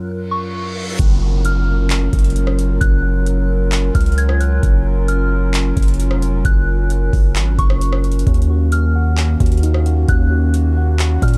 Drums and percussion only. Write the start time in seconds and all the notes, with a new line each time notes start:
0.99 kick, closed hi-hat
1.45 closed hi-hat
1.90 clap, closed hi-hat
2.13 kick, closed hi-hat
2.19 closed hi-hat
2.24 closed hi-hat
2.30 closed hi-hat
2.36 closed hi-hat
2.47 cross-stick
2.59 closed hi-hat
2.81 kick, closed hi-hat
3.26 closed hi-hat
3.72 clap, closed hi-hat
3.95 kick, closed hi-hat
4.01 closed hi-hat
4.06 closed hi-hat
4.12 closed hi-hat
4.18 closed hi-hat
4.29 cross-stick
4.41 closed hi-hat
4.63 kick, closed hi-hat
5.08 closed hi-hat
5.54 clap, closed hi-hat
5.77 kick, closed hi-hat
5.82 closed hi-hat
5.88 closed hi-hat
5.94 closed hi-hat
6.00 closed hi-hat
6.11 cross-stick
6.22 closed hi-hat
6.45 kick, closed hi-hat
6.90 closed hi-hat
7.13 kick, open hi-hat
7.36 clap, closed hi-hat
7.59 kick, closed hi-hat
7.70 cross-stick
7.81 closed hi-hat
7.92 cross-stick
8.04 closed hi-hat
8.12 closed hi-hat
8.19 closed hi-hat
8.27 kick, closed hi-hat
8.34 closed hi-hat
8.42 closed hi-hat
8.72 closed hi-hat
9.17 clap, closed hi-hat
9.40 kick, closed hi-hat
9.46 closed hi-hat
9.52 closed hi-hat
9.57 closed hi-hat
9.63 closed hi-hat
9.74 cross-stick
9.86 closed hi-hat
10.09 kick, closed hi-hat
10.54 closed hi-hat
10.99 clap, closed hi-hat
11.22 kick, closed hi-hat
11.28 closed hi-hat
11.34 closed hi-hat